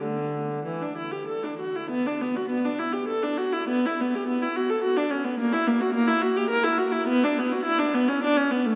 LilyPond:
\new Staff \with { instrumentName = "Viola" } { \time 3/4 \key d \major \tempo 4 = 104 d4 e16 d'16 e'16 g'16 a'16 d'16 fis'16 e'16 | \key b \minor b16 d'16 b16 fis'16 b16 d'16 e'16 g'16 a'16 d'16 fis'16 e'16 | b16 e'16 b16 g'16 b16 e'16 fis'16 a'16 fis'16 d'16 cis'16 b16 | ais16 e'16 ais16 fis'16 ais16 e'16 fis'16 g'16 ais'16 e'16 fis'16 e'16 |
b16 d'16 b16 fis'16 e'16 d'16 b16 cis'16 d'16 cis'16 b16 a16 | }